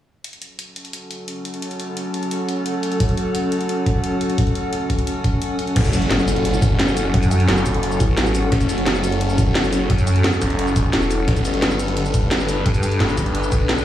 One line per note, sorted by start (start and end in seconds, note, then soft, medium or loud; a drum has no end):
0.24 5.72 F#3 medium
0.24 5.72 C#4 medium
0.24 11.28 C#4 medium
0.24 5.72 F#4 medium
0.24 5.72 A4 medium
0.24 closed hi-hat medium
0.33 closed hi-hat soft
0.42 closed hi-hat medium
0.59 11.83 A4 medium
0.59 closed hi-hat medium
0.76 closed hi-hat medium
0.84 11.28 F#5 medium
0.84 closed hi-hat soft
0.93 closed hi-hat medium
1.11 closed hi-hat medium
1.28 closed hi-hat medium
1.45 closed hi-hat medium
1.54 closed hi-hat soft
1.62 closed hi-hat medium
1.71 closed hi-hat soft
1.80 closed hi-hat medium
1.97 closed hi-hat medium
2.14 closed hi-hat medium
2.23 closed hi-hat soft
2.31 closed hi-hat medium
2.49 closed hi-hat medium
2.66 closed hi-hat medium
2.83 closed hi-hat medium
2.92 closed hi-hat soft
3.00 kick loud
3.00 closed hi-hat medium
3.09 closed hi-hat soft
3.17 closed hi-hat medium
3.35 closed hi-hat medium
3.52 closed hi-hat medium
3.61 closed hi-hat soft
3.69 closed hi-hat medium
3.86 kick loud
3.86 closed hi-hat medium
4.04 closed hi-hat medium
4.21 closed hi-hat medium
4.30 closed hi-hat soft
4.38 kick loud
4.38 closed hi-hat medium
4.47 closed hi-hat soft
4.55 closed hi-hat medium
4.73 closed hi-hat medium
4.90 kick medium
4.90 closed hi-hat medium
4.99 closed hi-hat soft
5.07 closed hi-hat medium
5.24 kick loud
5.24 closed hi-hat medium
5.42 closed hi-hat medium
5.59 closed hi-hat medium
5.67 closed hi-hat soft
5.76 7.13 F#1 medium
5.76 11.24 F#3 medium
5.76 11.24 C#4 medium
5.76 11.24 F#4 medium
5.76 13.85 A4 medium
5.76 kick loud
5.76 closed hi-hat loud
5.76 crash loud
5.76 impact medium
5.85 closed hi-hat soft
5.85 shaker soft
5.93 closed hi-hat medium
5.93 shaker medium
6.02 closed hi-hat soft
6.11 snare loud
6.11 closed hi-hat loud
6.19 shaker soft
6.28 closed hi-hat medium
6.28 shaker medium
6.36 closed hi-hat soft
6.45 closed hi-hat loud
6.54 shaker soft
6.62 kick loud
6.62 closed hi-hat medium
6.62 shaker medium
6.80 snare loud
6.80 closed hi-hat loud
6.88 shaker soft
6.97 closed hi-hat medium
6.97 shaker medium
7.14 7.47 F#2 loud
7.14 kick loud
7.14 closed hi-hat medium
7.23 closed hi-hat soft
7.23 shaker soft
7.31 closed hi-hat medium
7.31 shaker medium
7.40 closed hi-hat soft
7.48 7.99 F#1 loud
7.48 snare loud
7.48 closed hi-hat loud
7.57 shaker soft
7.66 kick medium
7.66 closed hi-hat medium
7.66 shaker medium
7.74 closed hi-hat soft
7.83 closed hi-hat loud
7.92 shaker soft
8.00 8.51 A1 loud
8.00 kick loud
8.00 closed hi-hat medium
8.00 shaker medium
8.18 snare loud
8.18 closed hi-hat loud
8.26 shaker soft
8.35 closed hi-hat medium
8.35 shaker medium
8.52 9.89 F#1 loud
8.52 kick loud
8.52 closed hi-hat loud
8.61 closed hi-hat soft
8.61 shaker soft
8.69 closed hi-hat medium
8.69 shaker medium
8.78 closed hi-hat soft
8.86 snare loud
8.86 closed hi-hat loud
8.95 shaker soft
9.04 closed hi-hat medium
9.04 shaker medium
9.12 closed hi-hat soft
9.21 closed hi-hat medium
9.30 shaker soft
9.38 kick loud
9.38 closed hi-hat medium
9.38 shaker medium
9.55 snare loud
9.55 closed hi-hat medium
9.64 shaker soft
9.73 closed hi-hat medium
9.73 shaker medium
9.90 10.23 F#2 loud
9.90 kick loud
9.90 closed hi-hat medium
9.98 closed hi-hat soft
9.98 shaker soft
10.07 closed hi-hat medium
10.07 shaker medium
10.16 closed hi-hat soft
10.24 snare loud
10.24 closed hi-hat loud
10.33 shaker soft
10.42 10.92 F#1 loud
10.42 kick medium
10.42 closed hi-hat medium
10.42 shaker medium
10.50 closed hi-hat soft
10.59 closed hi-hat medium
10.67 shaker soft
10.76 kick loud
10.76 closed hi-hat medium
10.76 shaker medium
10.93 11.26 E1 loud
10.93 snare loud
10.93 closed hi-hat medium
11.02 shaker soft
11.11 closed hi-hat medium
11.11 shaker medium
11.28 12.64 G1 medium
11.28 13.85 G3 medium
11.28 13.85 D4 medium
11.28 13.85 B4 medium
11.28 kick loud
11.28 closed hi-hat medium
11.36 closed hi-hat soft
11.36 shaker soft
11.45 closed hi-hat medium
11.45 shaker medium
11.54 closed hi-hat soft
11.62 snare loud
11.62 closed hi-hat medium
11.71 shaker soft
11.79 13.85 B4 medium
11.79 closed hi-hat medium
11.79 shaker medium
11.88 closed hi-hat soft
11.97 closed hi-hat medium
12.05 shaker soft
12.14 kick loud
12.14 closed hi-hat medium
12.14 shaker medium
12.31 13.85 G5 medium
12.31 snare loud
12.31 closed hi-hat medium
12.40 shaker soft
12.49 closed hi-hat medium
12.49 shaker medium
12.66 12.99 G2 loud
12.66 kick loud
12.66 closed hi-hat medium
12.74 closed hi-hat soft
12.74 shaker soft
12.83 closed hi-hat medium
12.83 shaker medium
12.92 closed hi-hat soft
13.00 13.51 G1 loud
13.00 snare loud
13.00 closed hi-hat medium
13.09 shaker soft
13.17 kick medium
13.17 closed hi-hat medium
13.17 shaker medium
13.26 closed hi-hat soft
13.35 closed hi-hat medium
13.43 shaker soft
13.52 13.85 B1 loud
13.52 kick loud
13.52 closed hi-hat medium
13.52 shaker medium
13.69 snare loud
13.69 closed hi-hat medium
13.78 shaker soft